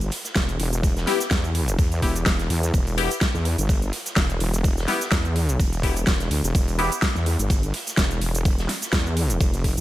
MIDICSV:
0, 0, Header, 1, 4, 480
1, 0, Start_track
1, 0, Tempo, 476190
1, 842, Time_signature, 4, 2, 24, 8
1, 9884, End_track
2, 0, Start_track
2, 0, Title_t, "Synth stab"
2, 0, Program_c, 0, 62
2, 1081, Note_on_c, 0, 59, 82
2, 1081, Note_on_c, 0, 64, 75
2, 1081, Note_on_c, 0, 67, 91
2, 1196, Note_off_c, 0, 59, 0
2, 1196, Note_off_c, 0, 64, 0
2, 1196, Note_off_c, 0, 67, 0
2, 2041, Note_on_c, 0, 59, 74
2, 2041, Note_on_c, 0, 64, 68
2, 2041, Note_on_c, 0, 67, 84
2, 2156, Note_off_c, 0, 59, 0
2, 2156, Note_off_c, 0, 64, 0
2, 2156, Note_off_c, 0, 67, 0
2, 3001, Note_on_c, 0, 59, 94
2, 3001, Note_on_c, 0, 64, 81
2, 3001, Note_on_c, 0, 67, 100
2, 3116, Note_off_c, 0, 59, 0
2, 3116, Note_off_c, 0, 64, 0
2, 3116, Note_off_c, 0, 67, 0
2, 4921, Note_on_c, 0, 59, 82
2, 4921, Note_on_c, 0, 64, 75
2, 4921, Note_on_c, 0, 67, 86
2, 5036, Note_off_c, 0, 59, 0
2, 5036, Note_off_c, 0, 64, 0
2, 5036, Note_off_c, 0, 67, 0
2, 5881, Note_on_c, 0, 59, 79
2, 5881, Note_on_c, 0, 64, 68
2, 5881, Note_on_c, 0, 67, 83
2, 5996, Note_off_c, 0, 59, 0
2, 5996, Note_off_c, 0, 64, 0
2, 5996, Note_off_c, 0, 67, 0
2, 6841, Note_on_c, 0, 59, 93
2, 6841, Note_on_c, 0, 64, 78
2, 6841, Note_on_c, 0, 67, 97
2, 6956, Note_off_c, 0, 59, 0
2, 6956, Note_off_c, 0, 64, 0
2, 6956, Note_off_c, 0, 67, 0
2, 9884, End_track
3, 0, Start_track
3, 0, Title_t, "Wobble bass"
3, 0, Program_c, 1, 39
3, 0, Note_on_c, 1, 31, 96
3, 104, Note_off_c, 1, 31, 0
3, 360, Note_on_c, 1, 28, 100
3, 584, Note_off_c, 1, 28, 0
3, 600, Note_on_c, 1, 28, 99
3, 1064, Note_off_c, 1, 28, 0
3, 1320, Note_on_c, 1, 40, 101
3, 1784, Note_off_c, 1, 40, 0
3, 1800, Note_on_c, 1, 40, 100
3, 2024, Note_off_c, 1, 40, 0
3, 2040, Note_on_c, 1, 28, 95
3, 2263, Note_off_c, 1, 28, 0
3, 2280, Note_on_c, 1, 28, 99
3, 2503, Note_off_c, 1, 28, 0
3, 2521, Note_on_c, 1, 40, 98
3, 2744, Note_off_c, 1, 40, 0
3, 2761, Note_on_c, 1, 28, 93
3, 3112, Note_off_c, 1, 28, 0
3, 3373, Note_on_c, 1, 40, 98
3, 3592, Note_off_c, 1, 40, 0
3, 3613, Note_on_c, 1, 31, 102
3, 3944, Note_off_c, 1, 31, 0
3, 4201, Note_on_c, 1, 28, 100
3, 4424, Note_off_c, 1, 28, 0
3, 4440, Note_on_c, 1, 28, 100
3, 4903, Note_off_c, 1, 28, 0
3, 5161, Note_on_c, 1, 40, 103
3, 5624, Note_off_c, 1, 40, 0
3, 5641, Note_on_c, 1, 28, 97
3, 6104, Note_off_c, 1, 28, 0
3, 6121, Note_on_c, 1, 28, 98
3, 6344, Note_off_c, 1, 28, 0
3, 6360, Note_on_c, 1, 38, 100
3, 6472, Note_off_c, 1, 38, 0
3, 6492, Note_on_c, 1, 28, 98
3, 6583, Note_off_c, 1, 28, 0
3, 6601, Note_on_c, 1, 28, 102
3, 6952, Note_off_c, 1, 28, 0
3, 7212, Note_on_c, 1, 40, 105
3, 7431, Note_off_c, 1, 40, 0
3, 7453, Note_on_c, 1, 31, 98
3, 7784, Note_off_c, 1, 31, 0
3, 8041, Note_on_c, 1, 28, 96
3, 8264, Note_off_c, 1, 28, 0
3, 8281, Note_on_c, 1, 28, 95
3, 8744, Note_off_c, 1, 28, 0
3, 9001, Note_on_c, 1, 40, 98
3, 9464, Note_off_c, 1, 40, 0
3, 9481, Note_on_c, 1, 29, 102
3, 9832, Note_off_c, 1, 29, 0
3, 9852, Note_on_c, 1, 40, 93
3, 9884, Note_off_c, 1, 40, 0
3, 9884, End_track
4, 0, Start_track
4, 0, Title_t, "Drums"
4, 13, Note_on_c, 9, 42, 55
4, 17, Note_on_c, 9, 69, 34
4, 114, Note_off_c, 9, 42, 0
4, 114, Note_on_c, 9, 42, 66
4, 115, Note_on_c, 9, 38, 47
4, 118, Note_off_c, 9, 69, 0
4, 121, Note_on_c, 9, 46, 106
4, 215, Note_off_c, 9, 38, 0
4, 215, Note_off_c, 9, 42, 0
4, 222, Note_off_c, 9, 46, 0
4, 251, Note_on_c, 9, 38, 45
4, 253, Note_on_c, 9, 42, 68
4, 257, Note_on_c, 9, 69, 67
4, 352, Note_off_c, 9, 38, 0
4, 354, Note_off_c, 9, 42, 0
4, 357, Note_on_c, 9, 42, 93
4, 358, Note_off_c, 9, 69, 0
4, 358, Note_on_c, 9, 38, 127
4, 361, Note_on_c, 9, 36, 127
4, 365, Note_on_c, 9, 69, 57
4, 366, Note_off_c, 9, 38, 0
4, 366, Note_on_c, 9, 38, 127
4, 458, Note_off_c, 9, 42, 0
4, 462, Note_off_c, 9, 36, 0
4, 466, Note_off_c, 9, 69, 0
4, 467, Note_off_c, 9, 38, 0
4, 494, Note_on_c, 9, 42, 53
4, 498, Note_on_c, 9, 69, 33
4, 594, Note_off_c, 9, 42, 0
4, 598, Note_off_c, 9, 69, 0
4, 601, Note_on_c, 9, 46, 113
4, 604, Note_on_c, 9, 42, 66
4, 702, Note_off_c, 9, 46, 0
4, 705, Note_off_c, 9, 42, 0
4, 733, Note_on_c, 9, 42, 65
4, 737, Note_on_c, 9, 69, 66
4, 834, Note_off_c, 9, 42, 0
4, 838, Note_off_c, 9, 69, 0
4, 841, Note_on_c, 9, 36, 121
4, 841, Note_on_c, 9, 42, 91
4, 845, Note_on_c, 9, 69, 56
4, 941, Note_off_c, 9, 36, 0
4, 942, Note_off_c, 9, 42, 0
4, 946, Note_off_c, 9, 69, 0
4, 974, Note_on_c, 9, 42, 35
4, 976, Note_on_c, 9, 38, 52
4, 978, Note_on_c, 9, 69, 34
4, 1075, Note_off_c, 9, 42, 0
4, 1077, Note_off_c, 9, 38, 0
4, 1079, Note_off_c, 9, 69, 0
4, 1079, Note_on_c, 9, 38, 64
4, 1082, Note_on_c, 9, 42, 70
4, 1082, Note_on_c, 9, 46, 115
4, 1180, Note_off_c, 9, 38, 0
4, 1183, Note_off_c, 9, 42, 0
4, 1183, Note_off_c, 9, 46, 0
4, 1210, Note_on_c, 9, 38, 47
4, 1214, Note_on_c, 9, 42, 67
4, 1218, Note_on_c, 9, 69, 68
4, 1311, Note_off_c, 9, 38, 0
4, 1315, Note_off_c, 9, 42, 0
4, 1319, Note_off_c, 9, 69, 0
4, 1319, Note_on_c, 9, 38, 123
4, 1321, Note_on_c, 9, 36, 126
4, 1322, Note_on_c, 9, 42, 94
4, 1324, Note_off_c, 9, 38, 0
4, 1324, Note_on_c, 9, 38, 106
4, 1326, Note_on_c, 9, 69, 59
4, 1421, Note_off_c, 9, 36, 0
4, 1423, Note_off_c, 9, 42, 0
4, 1425, Note_off_c, 9, 38, 0
4, 1427, Note_off_c, 9, 69, 0
4, 1454, Note_on_c, 9, 42, 34
4, 1458, Note_on_c, 9, 69, 31
4, 1555, Note_off_c, 9, 42, 0
4, 1559, Note_off_c, 9, 69, 0
4, 1559, Note_on_c, 9, 42, 69
4, 1561, Note_on_c, 9, 46, 110
4, 1660, Note_off_c, 9, 42, 0
4, 1662, Note_off_c, 9, 46, 0
4, 1693, Note_on_c, 9, 42, 65
4, 1697, Note_on_c, 9, 69, 66
4, 1794, Note_off_c, 9, 42, 0
4, 1798, Note_off_c, 9, 69, 0
4, 1800, Note_on_c, 9, 36, 126
4, 1803, Note_on_c, 9, 42, 91
4, 1805, Note_on_c, 9, 69, 56
4, 1901, Note_off_c, 9, 36, 0
4, 1904, Note_off_c, 9, 42, 0
4, 1906, Note_off_c, 9, 69, 0
4, 1931, Note_on_c, 9, 42, 40
4, 1933, Note_off_c, 9, 42, 0
4, 1933, Note_on_c, 9, 42, 53
4, 1937, Note_on_c, 9, 69, 32
4, 2034, Note_off_c, 9, 42, 0
4, 2038, Note_off_c, 9, 69, 0
4, 2038, Note_on_c, 9, 42, 62
4, 2040, Note_on_c, 9, 36, 61
4, 2041, Note_on_c, 9, 46, 110
4, 2139, Note_off_c, 9, 42, 0
4, 2141, Note_off_c, 9, 36, 0
4, 2142, Note_off_c, 9, 46, 0
4, 2173, Note_on_c, 9, 42, 64
4, 2177, Note_on_c, 9, 69, 67
4, 2274, Note_off_c, 9, 42, 0
4, 2278, Note_off_c, 9, 69, 0
4, 2278, Note_on_c, 9, 38, 123
4, 2280, Note_on_c, 9, 36, 122
4, 2283, Note_on_c, 9, 42, 83
4, 2285, Note_on_c, 9, 69, 60
4, 2379, Note_off_c, 9, 38, 0
4, 2381, Note_off_c, 9, 36, 0
4, 2384, Note_off_c, 9, 42, 0
4, 2386, Note_off_c, 9, 69, 0
4, 2410, Note_on_c, 9, 38, 53
4, 2414, Note_on_c, 9, 42, 50
4, 2418, Note_on_c, 9, 69, 33
4, 2511, Note_off_c, 9, 38, 0
4, 2514, Note_off_c, 9, 42, 0
4, 2518, Note_off_c, 9, 69, 0
4, 2522, Note_on_c, 9, 46, 111
4, 2529, Note_on_c, 9, 42, 72
4, 2622, Note_off_c, 9, 46, 0
4, 2630, Note_off_c, 9, 42, 0
4, 2653, Note_on_c, 9, 42, 63
4, 2657, Note_on_c, 9, 69, 65
4, 2754, Note_off_c, 9, 42, 0
4, 2757, Note_on_c, 9, 42, 89
4, 2758, Note_off_c, 9, 69, 0
4, 2761, Note_on_c, 9, 36, 118
4, 2765, Note_on_c, 9, 69, 58
4, 2858, Note_off_c, 9, 42, 0
4, 2861, Note_off_c, 9, 36, 0
4, 2866, Note_off_c, 9, 69, 0
4, 2893, Note_on_c, 9, 42, 38
4, 2897, Note_on_c, 9, 69, 36
4, 2994, Note_off_c, 9, 42, 0
4, 2998, Note_off_c, 9, 69, 0
4, 3001, Note_on_c, 9, 46, 112
4, 3006, Note_on_c, 9, 42, 77
4, 3102, Note_off_c, 9, 46, 0
4, 3107, Note_off_c, 9, 42, 0
4, 3133, Note_on_c, 9, 42, 68
4, 3137, Note_on_c, 9, 69, 72
4, 3138, Note_off_c, 9, 42, 0
4, 3138, Note_on_c, 9, 42, 48
4, 3238, Note_off_c, 9, 69, 0
4, 3239, Note_off_c, 9, 42, 0
4, 3239, Note_on_c, 9, 38, 122
4, 3241, Note_on_c, 9, 36, 124
4, 3241, Note_on_c, 9, 42, 83
4, 3243, Note_off_c, 9, 38, 0
4, 3243, Note_on_c, 9, 38, 127
4, 3245, Note_on_c, 9, 69, 62
4, 3342, Note_off_c, 9, 36, 0
4, 3342, Note_off_c, 9, 42, 0
4, 3344, Note_off_c, 9, 38, 0
4, 3346, Note_off_c, 9, 69, 0
4, 3374, Note_on_c, 9, 38, 37
4, 3377, Note_on_c, 9, 69, 34
4, 3475, Note_off_c, 9, 38, 0
4, 3477, Note_on_c, 9, 42, 67
4, 3478, Note_off_c, 9, 69, 0
4, 3481, Note_on_c, 9, 46, 105
4, 3578, Note_off_c, 9, 42, 0
4, 3582, Note_off_c, 9, 46, 0
4, 3613, Note_on_c, 9, 42, 66
4, 3617, Note_on_c, 9, 69, 69
4, 3714, Note_off_c, 9, 42, 0
4, 3718, Note_off_c, 9, 69, 0
4, 3721, Note_on_c, 9, 36, 127
4, 3724, Note_on_c, 9, 42, 100
4, 3725, Note_on_c, 9, 69, 57
4, 3822, Note_off_c, 9, 36, 0
4, 3825, Note_off_c, 9, 42, 0
4, 3826, Note_off_c, 9, 69, 0
4, 3853, Note_on_c, 9, 42, 51
4, 3857, Note_on_c, 9, 69, 35
4, 3953, Note_off_c, 9, 42, 0
4, 3957, Note_off_c, 9, 69, 0
4, 3960, Note_on_c, 9, 46, 103
4, 3963, Note_on_c, 9, 42, 64
4, 3964, Note_on_c, 9, 38, 53
4, 4061, Note_off_c, 9, 46, 0
4, 4064, Note_off_c, 9, 38, 0
4, 4064, Note_off_c, 9, 42, 0
4, 4092, Note_on_c, 9, 42, 67
4, 4096, Note_on_c, 9, 69, 74
4, 4098, Note_on_c, 9, 38, 51
4, 4193, Note_off_c, 9, 42, 0
4, 4195, Note_on_c, 9, 42, 87
4, 4197, Note_off_c, 9, 38, 0
4, 4197, Note_off_c, 9, 69, 0
4, 4197, Note_on_c, 9, 38, 119
4, 4201, Note_on_c, 9, 36, 127
4, 4204, Note_on_c, 9, 69, 59
4, 4205, Note_off_c, 9, 38, 0
4, 4205, Note_on_c, 9, 38, 122
4, 4295, Note_off_c, 9, 42, 0
4, 4301, Note_off_c, 9, 36, 0
4, 4305, Note_off_c, 9, 69, 0
4, 4306, Note_off_c, 9, 38, 0
4, 4332, Note_on_c, 9, 42, 52
4, 4336, Note_on_c, 9, 69, 34
4, 4433, Note_off_c, 9, 42, 0
4, 4436, Note_on_c, 9, 42, 65
4, 4437, Note_off_c, 9, 69, 0
4, 4440, Note_on_c, 9, 46, 105
4, 4537, Note_off_c, 9, 42, 0
4, 4541, Note_off_c, 9, 46, 0
4, 4571, Note_on_c, 9, 42, 63
4, 4576, Note_on_c, 9, 69, 65
4, 4672, Note_off_c, 9, 42, 0
4, 4676, Note_off_c, 9, 69, 0
4, 4676, Note_on_c, 9, 42, 95
4, 4681, Note_on_c, 9, 36, 118
4, 4684, Note_on_c, 9, 69, 61
4, 4777, Note_off_c, 9, 42, 0
4, 4781, Note_off_c, 9, 36, 0
4, 4785, Note_off_c, 9, 69, 0
4, 4812, Note_on_c, 9, 42, 36
4, 4816, Note_on_c, 9, 69, 36
4, 4818, Note_on_c, 9, 38, 51
4, 4913, Note_off_c, 9, 42, 0
4, 4917, Note_off_c, 9, 38, 0
4, 4917, Note_off_c, 9, 69, 0
4, 4917, Note_on_c, 9, 38, 59
4, 4920, Note_on_c, 9, 46, 103
4, 4922, Note_on_c, 9, 42, 63
4, 5018, Note_off_c, 9, 38, 0
4, 5021, Note_off_c, 9, 46, 0
4, 5023, Note_off_c, 9, 42, 0
4, 5052, Note_on_c, 9, 42, 69
4, 5056, Note_on_c, 9, 69, 73
4, 5059, Note_on_c, 9, 38, 49
4, 5153, Note_off_c, 9, 42, 0
4, 5157, Note_off_c, 9, 38, 0
4, 5157, Note_off_c, 9, 69, 0
4, 5157, Note_on_c, 9, 38, 127
4, 5160, Note_on_c, 9, 42, 85
4, 5161, Note_on_c, 9, 36, 116
4, 5164, Note_on_c, 9, 69, 64
4, 5166, Note_off_c, 9, 38, 0
4, 5166, Note_on_c, 9, 38, 115
4, 5261, Note_off_c, 9, 36, 0
4, 5261, Note_off_c, 9, 42, 0
4, 5265, Note_off_c, 9, 69, 0
4, 5267, Note_off_c, 9, 38, 0
4, 5292, Note_on_c, 9, 42, 36
4, 5296, Note_on_c, 9, 69, 35
4, 5393, Note_off_c, 9, 42, 0
4, 5397, Note_off_c, 9, 69, 0
4, 5401, Note_on_c, 9, 46, 102
4, 5410, Note_on_c, 9, 42, 64
4, 5501, Note_off_c, 9, 46, 0
4, 5511, Note_off_c, 9, 42, 0
4, 5533, Note_on_c, 9, 42, 65
4, 5537, Note_on_c, 9, 69, 71
4, 5634, Note_off_c, 9, 42, 0
4, 5638, Note_off_c, 9, 69, 0
4, 5641, Note_on_c, 9, 36, 116
4, 5645, Note_on_c, 9, 69, 60
4, 5646, Note_on_c, 9, 42, 97
4, 5742, Note_off_c, 9, 36, 0
4, 5746, Note_off_c, 9, 69, 0
4, 5747, Note_off_c, 9, 42, 0
4, 5773, Note_on_c, 9, 42, 55
4, 5777, Note_on_c, 9, 69, 37
4, 5778, Note_off_c, 9, 42, 0
4, 5778, Note_on_c, 9, 42, 47
4, 5878, Note_off_c, 9, 69, 0
4, 5879, Note_off_c, 9, 42, 0
4, 5880, Note_on_c, 9, 42, 69
4, 5881, Note_on_c, 9, 36, 60
4, 5881, Note_on_c, 9, 46, 104
4, 5981, Note_off_c, 9, 42, 0
4, 5982, Note_off_c, 9, 36, 0
4, 5982, Note_off_c, 9, 46, 0
4, 6013, Note_on_c, 9, 42, 70
4, 6017, Note_on_c, 9, 69, 69
4, 6113, Note_off_c, 9, 42, 0
4, 6113, Note_on_c, 9, 42, 97
4, 6118, Note_off_c, 9, 69, 0
4, 6118, Note_on_c, 9, 38, 119
4, 6119, Note_off_c, 9, 38, 0
4, 6119, Note_on_c, 9, 38, 108
4, 6121, Note_on_c, 9, 36, 121
4, 6125, Note_on_c, 9, 69, 60
4, 6214, Note_off_c, 9, 42, 0
4, 6220, Note_off_c, 9, 38, 0
4, 6222, Note_off_c, 9, 36, 0
4, 6226, Note_off_c, 9, 69, 0
4, 6251, Note_on_c, 9, 38, 49
4, 6253, Note_on_c, 9, 42, 53
4, 6257, Note_on_c, 9, 69, 36
4, 6352, Note_off_c, 9, 38, 0
4, 6354, Note_off_c, 9, 42, 0
4, 6358, Note_off_c, 9, 69, 0
4, 6358, Note_on_c, 9, 42, 71
4, 6361, Note_on_c, 9, 46, 105
4, 6459, Note_off_c, 9, 42, 0
4, 6462, Note_off_c, 9, 46, 0
4, 6493, Note_on_c, 9, 42, 66
4, 6497, Note_on_c, 9, 69, 73
4, 6594, Note_off_c, 9, 42, 0
4, 6598, Note_off_c, 9, 69, 0
4, 6601, Note_on_c, 9, 36, 119
4, 6605, Note_on_c, 9, 69, 59
4, 6606, Note_on_c, 9, 42, 89
4, 6702, Note_off_c, 9, 36, 0
4, 6706, Note_off_c, 9, 69, 0
4, 6707, Note_off_c, 9, 42, 0
4, 6733, Note_on_c, 9, 42, 40
4, 6735, Note_off_c, 9, 42, 0
4, 6735, Note_on_c, 9, 42, 51
4, 6737, Note_on_c, 9, 69, 38
4, 6836, Note_off_c, 9, 42, 0
4, 6838, Note_off_c, 9, 69, 0
4, 6841, Note_on_c, 9, 46, 104
4, 6847, Note_on_c, 9, 42, 65
4, 6942, Note_off_c, 9, 46, 0
4, 6948, Note_off_c, 9, 42, 0
4, 6973, Note_on_c, 9, 42, 70
4, 6977, Note_off_c, 9, 42, 0
4, 6977, Note_on_c, 9, 42, 40
4, 6977, Note_on_c, 9, 69, 78
4, 7077, Note_off_c, 9, 42, 0
4, 7078, Note_off_c, 9, 69, 0
4, 7078, Note_on_c, 9, 38, 127
4, 7081, Note_on_c, 9, 36, 119
4, 7083, Note_off_c, 9, 38, 0
4, 7083, Note_on_c, 9, 38, 112
4, 7083, Note_on_c, 9, 42, 97
4, 7085, Note_on_c, 9, 69, 63
4, 7182, Note_off_c, 9, 36, 0
4, 7184, Note_off_c, 9, 38, 0
4, 7184, Note_off_c, 9, 42, 0
4, 7186, Note_off_c, 9, 69, 0
4, 7216, Note_on_c, 9, 38, 38
4, 7217, Note_on_c, 9, 69, 35
4, 7317, Note_off_c, 9, 38, 0
4, 7318, Note_off_c, 9, 69, 0
4, 7321, Note_on_c, 9, 46, 97
4, 7326, Note_on_c, 9, 42, 69
4, 7422, Note_off_c, 9, 46, 0
4, 7427, Note_off_c, 9, 42, 0
4, 7453, Note_on_c, 9, 42, 73
4, 7457, Note_on_c, 9, 69, 71
4, 7554, Note_off_c, 9, 42, 0
4, 7558, Note_off_c, 9, 69, 0
4, 7561, Note_on_c, 9, 36, 116
4, 7562, Note_on_c, 9, 42, 92
4, 7565, Note_on_c, 9, 69, 59
4, 7662, Note_off_c, 9, 36, 0
4, 7663, Note_off_c, 9, 42, 0
4, 7666, Note_off_c, 9, 69, 0
4, 7693, Note_on_c, 9, 42, 58
4, 7697, Note_on_c, 9, 69, 38
4, 7794, Note_off_c, 9, 42, 0
4, 7798, Note_off_c, 9, 69, 0
4, 7798, Note_on_c, 9, 42, 74
4, 7801, Note_on_c, 9, 46, 105
4, 7806, Note_on_c, 9, 38, 55
4, 7899, Note_off_c, 9, 42, 0
4, 7902, Note_off_c, 9, 46, 0
4, 7907, Note_off_c, 9, 38, 0
4, 7932, Note_on_c, 9, 42, 68
4, 7936, Note_on_c, 9, 69, 70
4, 7937, Note_on_c, 9, 38, 47
4, 8033, Note_off_c, 9, 42, 0
4, 8037, Note_off_c, 9, 69, 0
4, 8038, Note_off_c, 9, 38, 0
4, 8038, Note_on_c, 9, 38, 127
4, 8041, Note_on_c, 9, 36, 117
4, 8041, Note_on_c, 9, 42, 100
4, 8043, Note_off_c, 9, 38, 0
4, 8043, Note_on_c, 9, 38, 123
4, 8045, Note_on_c, 9, 69, 62
4, 8142, Note_off_c, 9, 36, 0
4, 8142, Note_off_c, 9, 42, 0
4, 8144, Note_off_c, 9, 38, 0
4, 8145, Note_off_c, 9, 69, 0
4, 8173, Note_on_c, 9, 42, 57
4, 8177, Note_on_c, 9, 69, 34
4, 8274, Note_off_c, 9, 42, 0
4, 8278, Note_off_c, 9, 69, 0
4, 8281, Note_on_c, 9, 46, 105
4, 8283, Note_on_c, 9, 42, 63
4, 8382, Note_off_c, 9, 46, 0
4, 8384, Note_off_c, 9, 42, 0
4, 8413, Note_on_c, 9, 42, 73
4, 8417, Note_on_c, 9, 69, 71
4, 8514, Note_off_c, 9, 42, 0
4, 8518, Note_off_c, 9, 69, 0
4, 8521, Note_on_c, 9, 36, 115
4, 8525, Note_on_c, 9, 69, 60
4, 8527, Note_on_c, 9, 42, 92
4, 8622, Note_off_c, 9, 36, 0
4, 8626, Note_off_c, 9, 69, 0
4, 8628, Note_off_c, 9, 42, 0
4, 8651, Note_on_c, 9, 38, 48
4, 8653, Note_on_c, 9, 42, 42
4, 8657, Note_on_c, 9, 69, 35
4, 8752, Note_off_c, 9, 38, 0
4, 8754, Note_off_c, 9, 42, 0
4, 8758, Note_off_c, 9, 69, 0
4, 8759, Note_on_c, 9, 38, 64
4, 8759, Note_on_c, 9, 42, 66
4, 8761, Note_on_c, 9, 46, 103
4, 8859, Note_off_c, 9, 38, 0
4, 8860, Note_off_c, 9, 42, 0
4, 8862, Note_off_c, 9, 46, 0
4, 8893, Note_on_c, 9, 42, 75
4, 8897, Note_on_c, 9, 69, 75
4, 8898, Note_on_c, 9, 38, 45
4, 8994, Note_off_c, 9, 38, 0
4, 8994, Note_off_c, 9, 42, 0
4, 8994, Note_on_c, 9, 38, 121
4, 8998, Note_off_c, 9, 69, 0
4, 8999, Note_off_c, 9, 38, 0
4, 8999, Note_on_c, 9, 38, 127
4, 9001, Note_on_c, 9, 36, 125
4, 9005, Note_on_c, 9, 42, 89
4, 9005, Note_on_c, 9, 69, 64
4, 9099, Note_off_c, 9, 38, 0
4, 9102, Note_off_c, 9, 36, 0
4, 9106, Note_off_c, 9, 42, 0
4, 9106, Note_off_c, 9, 69, 0
4, 9137, Note_on_c, 9, 69, 35
4, 9238, Note_off_c, 9, 69, 0
4, 9241, Note_on_c, 9, 46, 103
4, 9242, Note_on_c, 9, 42, 67
4, 9342, Note_off_c, 9, 46, 0
4, 9343, Note_off_c, 9, 42, 0
4, 9373, Note_on_c, 9, 42, 73
4, 9377, Note_on_c, 9, 69, 71
4, 9474, Note_off_c, 9, 42, 0
4, 9478, Note_off_c, 9, 69, 0
4, 9480, Note_on_c, 9, 42, 99
4, 9481, Note_on_c, 9, 36, 121
4, 9485, Note_on_c, 9, 69, 60
4, 9580, Note_off_c, 9, 42, 0
4, 9582, Note_off_c, 9, 36, 0
4, 9586, Note_off_c, 9, 69, 0
4, 9613, Note_on_c, 9, 42, 60
4, 9617, Note_on_c, 9, 69, 38
4, 9619, Note_off_c, 9, 42, 0
4, 9619, Note_on_c, 9, 42, 42
4, 9718, Note_off_c, 9, 69, 0
4, 9719, Note_off_c, 9, 42, 0
4, 9719, Note_on_c, 9, 42, 69
4, 9721, Note_on_c, 9, 36, 61
4, 9721, Note_on_c, 9, 46, 106
4, 9820, Note_off_c, 9, 42, 0
4, 9821, Note_off_c, 9, 36, 0
4, 9822, Note_off_c, 9, 46, 0
4, 9852, Note_on_c, 9, 42, 70
4, 9884, Note_off_c, 9, 42, 0
4, 9884, End_track
0, 0, End_of_file